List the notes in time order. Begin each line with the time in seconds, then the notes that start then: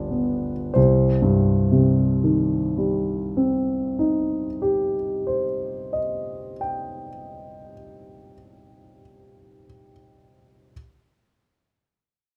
Already playing: G1 F3 B3 D4 G4 B4 D5
0.10 B3
0.74 C2 C5
1.22 G2
1.72 C3
2.24 D#3
2.78 G3
3.37 C4
3.99 D#4
4.62 G4
5.27 C5
5.93 D#5
6.61 G5